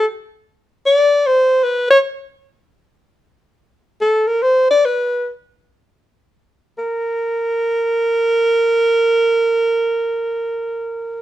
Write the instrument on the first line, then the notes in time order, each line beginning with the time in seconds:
alto saxophone
0.86 D5
1.26 C5
1.63 B4
1.90 C#5
4.01 A4
4.27 A#4
4.42 C5
4.70 D5
4.85 B4
6.78 A#4